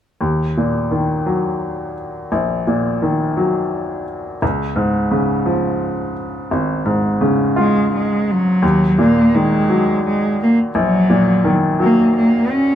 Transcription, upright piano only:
0, 0, Header, 1, 2, 480
1, 0, Start_track
1, 0, Key_signature, -6, "minor"
1, 0, Tempo, 701754
1, 140, Time_signature, 6, 3, 24, 8
1, 8721, End_track
2, 0, Start_track
2, 0, Title_t, "Upright piano"
2, 0, Program_c, 0, 0
2, 141, Note_on_c, 0, 39, 37
2, 277, Control_c, 0, 64, 127
2, 392, Note_on_c, 0, 46, 31
2, 622, Note_on_c, 0, 51, 28
2, 864, Note_on_c, 0, 54, 33
2, 1325, Note_off_c, 0, 46, 0
2, 1561, Note_off_c, 0, 39, 0
2, 1561, Note_off_c, 0, 51, 0
2, 1586, Note_on_c, 0, 34, 38
2, 1802, Note_off_c, 0, 54, 0
2, 1827, Note_on_c, 0, 46, 34
2, 2067, Note_on_c, 0, 51, 31
2, 2305, Note_on_c, 0, 54, 36
2, 2756, Note_off_c, 0, 46, 0
2, 2993, Note_off_c, 0, 34, 0
2, 2994, Note_off_c, 0, 51, 0
2, 2999, Note_off_c, 0, 54, 0
2, 3025, Note_on_c, 0, 37, 43
2, 3031, Control_c, 0, 64, 0
2, 3148, Control_c, 0, 64, 127
2, 3255, Note_on_c, 0, 44, 38
2, 3497, Note_on_c, 0, 49, 34
2, 3734, Note_on_c, 0, 53, 37
2, 4184, Note_off_c, 0, 44, 0
2, 4426, Note_off_c, 0, 49, 0
2, 4428, Note_off_c, 0, 37, 0
2, 4455, Note_on_c, 0, 32, 43
2, 4666, Note_off_c, 0, 53, 0
2, 4689, Note_on_c, 0, 44, 37
2, 4932, Note_on_c, 0, 49, 37
2, 5173, Note_on_c, 0, 65, 38
2, 5628, Note_off_c, 0, 44, 0
2, 5871, Note_off_c, 0, 49, 0
2, 5873, Note_off_c, 0, 32, 0
2, 5876, Note_off_c, 0, 65, 0
2, 5898, Note_on_c, 0, 39, 44
2, 5909, Control_c, 0, 64, 0
2, 6028, Control_c, 0, 64, 127
2, 6145, Note_on_c, 0, 46, 37
2, 6393, Note_on_c, 0, 51, 35
2, 6630, Note_on_c, 0, 54, 38
2, 7081, Note_off_c, 0, 46, 0
2, 7320, Note_off_c, 0, 39, 0
2, 7326, Note_off_c, 0, 51, 0
2, 7353, Note_on_c, 0, 34, 45
2, 7565, Note_off_c, 0, 54, 0
2, 7589, Note_on_c, 0, 46, 38
2, 7827, Note_on_c, 0, 51, 36
2, 8068, Note_on_c, 0, 54, 37
2, 8515, Note_off_c, 0, 46, 0
2, 8721, Note_off_c, 0, 34, 0
2, 8721, Note_off_c, 0, 51, 0
2, 8721, Note_off_c, 0, 54, 0
2, 8721, End_track
0, 0, End_of_file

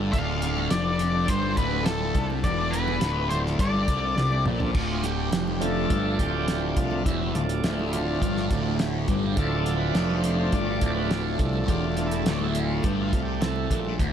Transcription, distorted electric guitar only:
0, 0, Header, 1, 2, 480
1, 0, Start_track
1, 0, Tempo, 577478
1, 110, Time_signature, 4, 2, 24, 8
1, 11743, End_track
2, 0, Start_track
2, 0, Title_t, "Distorted electric guitar"
2, 0, Program_c, 0, 30
2, 0, Note_on_c, 0, 43, 92
2, 102, Note_off_c, 0, 43, 0
2, 118, Note_on_c, 0, 38, 99
2, 585, Note_off_c, 0, 38, 0
2, 600, Note_on_c, 0, 41, 104
2, 1066, Note_off_c, 0, 41, 0
2, 1085, Note_on_c, 0, 43, 102
2, 1309, Note_off_c, 0, 43, 0
2, 1316, Note_on_c, 0, 38, 100
2, 1783, Note_off_c, 0, 38, 0
2, 1795, Note_on_c, 0, 48, 102
2, 2023, Note_off_c, 0, 48, 0
2, 2039, Note_on_c, 0, 40, 104
2, 2504, Note_off_c, 0, 40, 0
2, 2518, Note_on_c, 0, 38, 97
2, 2984, Note_off_c, 0, 38, 0
2, 2991, Note_on_c, 0, 43, 100
2, 3221, Note_off_c, 0, 43, 0
2, 3229, Note_on_c, 0, 48, 95
2, 3460, Note_off_c, 0, 48, 0
2, 3474, Note_on_c, 0, 48, 107
2, 3702, Note_off_c, 0, 48, 0
2, 3720, Note_on_c, 0, 46, 92
2, 3945, Note_off_c, 0, 46, 0
2, 3957, Note_on_c, 0, 38, 96
2, 4420, Note_off_c, 0, 38, 0
2, 4423, Note_on_c, 0, 41, 97
2, 4898, Note_off_c, 0, 41, 0
2, 4917, Note_on_c, 0, 43, 100
2, 5144, Note_off_c, 0, 43, 0
2, 5161, Note_on_c, 0, 38, 91
2, 5627, Note_off_c, 0, 38, 0
2, 5646, Note_on_c, 0, 48, 92
2, 5870, Note_off_c, 0, 48, 0
2, 5884, Note_on_c, 0, 40, 98
2, 6109, Note_off_c, 0, 40, 0
2, 6119, Note_on_c, 0, 38, 67
2, 6306, Note_off_c, 0, 38, 0
2, 6349, Note_on_c, 0, 38, 92
2, 6822, Note_off_c, 0, 38, 0
2, 6838, Note_on_c, 0, 43, 85
2, 7067, Note_off_c, 0, 43, 0
2, 7076, Note_on_c, 0, 38, 100
2, 7547, Note_off_c, 0, 38, 0
2, 7553, Note_on_c, 0, 43, 97
2, 7785, Note_off_c, 0, 43, 0
2, 7792, Note_on_c, 0, 38, 103
2, 8282, Note_off_c, 0, 38, 0
2, 8282, Note_on_c, 0, 41, 106
2, 8750, Note_off_c, 0, 41, 0
2, 8763, Note_on_c, 0, 43, 96
2, 8988, Note_off_c, 0, 43, 0
2, 8992, Note_on_c, 0, 38, 94
2, 9465, Note_off_c, 0, 38, 0
2, 9474, Note_on_c, 0, 48, 88
2, 9718, Note_off_c, 0, 48, 0
2, 9718, Note_on_c, 0, 40, 97
2, 10188, Note_off_c, 0, 40, 0
2, 10203, Note_on_c, 0, 38, 101
2, 10670, Note_off_c, 0, 38, 0
2, 10684, Note_on_c, 0, 43, 92
2, 10910, Note_off_c, 0, 43, 0
2, 10921, Note_on_c, 0, 48, 94
2, 11144, Note_off_c, 0, 48, 0
2, 11154, Note_on_c, 0, 48, 104
2, 11385, Note_off_c, 0, 48, 0
2, 11397, Note_on_c, 0, 46, 88
2, 11627, Note_off_c, 0, 46, 0
2, 11633, Note_on_c, 0, 38, 99
2, 11743, Note_off_c, 0, 38, 0
2, 11743, End_track
0, 0, End_of_file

